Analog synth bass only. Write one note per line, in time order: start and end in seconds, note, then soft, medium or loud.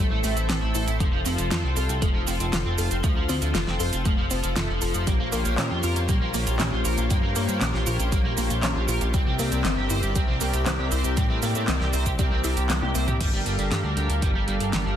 0.00 0.10 A1 loud
0.11 0.23 A1 medium
0.24 0.36 A1 loud
0.37 0.48 A1 medium
0.50 0.61 A1 loud
0.62 0.74 A1 medium
0.75 0.87 A1 medium
0.88 0.99 A1 medium
1.00 1.12 F1 loud
1.13 1.25 F1 medium
1.26 1.37 F1 medium
1.39 1.50 F1 medium
1.51 1.63 F2 loud
1.64 1.76 C2 medium
1.77 1.88 C2 loud
1.89 2.01 C2 medium
2.02 2.14 F1 loud
2.15 2.26 F1 medium
2.27 2.39 F1 loud
2.40 2.52 F1 medium
2.53 2.65 F1 loud
2.65 2.77 F1 medium
2.78 2.90 F1 medium
2.91 3.03 F1 medium
3.04 3.15 D2 loud
3.16 3.28 D2 medium
3.29 3.41 D2 medium
3.42 3.53 D2 medium
3.55 3.66 F1 loud
3.67 3.79 F1 medium
3.80 3.92 F1 loud
3.93 4.04 F1 medium
4.06 4.17 F1 loud
4.18 4.30 F1 medium
4.31 4.43 F1 medium
4.44 4.55 F1 medium
4.56 4.68 F1 loud
4.69 4.81 F1 medium
4.82 4.93 F1 medium
4.95 5.06 F1 medium
5.07 5.19 A#1 loud
5.20 5.32 A#1 medium
5.33 5.44 A#1 loud
5.45 5.57 A#1 medium
5.58 5.70 A#2 loud
5.71 5.82 F2 medium
5.84 5.95 F2 loud
5.96 6.08 F2 medium
6.09 6.21 A#1 loud
6.22 6.33 A#1 medium
6.34 6.46 A#1 loud
6.47 6.59 A#1 medium
6.60 6.71 A#1 loud
6.72 6.84 A#1 medium
6.85 6.97 A#1 loud
6.98 7.09 A#1 medium
7.11 7.22 G2 loud
7.23 7.35 G2 medium
7.36 7.48 G2 loud
7.49 7.60 G2 medium
7.61 7.73 A#1 loud
7.74 7.86 A#1 medium
7.87 7.98 A#1 loud
7.99 8.11 A#1 medium
8.12 8.24 A#1 loud
8.25 8.37 A#1 medium
8.38 8.49 A#1 loud
8.50 8.62 A#1 medium
8.63 8.75 A#1 loud
8.76 8.87 A#1 medium
8.88 9.00 A#1 loud
9.01 9.13 A#1 medium
9.14 9.26 C2 loud
9.27 9.38 C2 medium
9.39 9.51 C2 medium
9.52 9.64 C2 medium
9.65 9.76 G1 loud
9.77 9.89 G1 medium
9.90 10.02 G1 loud
10.03 10.15 G1 medium
10.16 10.27 C2 loud
10.28 10.40 C2 medium
10.41 10.53 C2 medium
10.54 10.65 C2 medium
10.66 10.78 C2 loud
10.79 10.91 C2 medium
10.92 11.04 C2 loud
11.04 11.16 C2 medium
11.17 11.29 A2 loud
11.30 11.42 A2 medium
11.43 11.54 A2 loud
11.55 11.67 A2 medium
11.68 11.80 C2 loud
11.81 11.93 C2 medium
11.93 12.05 C2 loud
12.06 12.18 C2 medium
12.19 12.31 C2 loud
12.32 12.43 C2 medium
12.44 12.56 C2 loud
12.57 12.69 C2 medium
12.70 12.81 C2 loud
12.83 12.94 C2 medium
12.95 13.07 C2 loud
13.08 13.20 C2 medium
13.21 13.32 G1 loud
13.33 13.45 G1 medium
13.46 13.58 G1 medium
13.59 13.70 G1 medium
13.71 13.83 G2 loud
13.84 13.96 D2 medium
13.97 14.09 D2 medium
14.10 14.21 D2 medium
14.22 14.34 G1 loud
14.35 14.47 G1 medium
14.48 14.59 G1 medium
14.60 14.72 G1 medium
14.73 14.85 G1 loud
14.86 14.96 G1 medium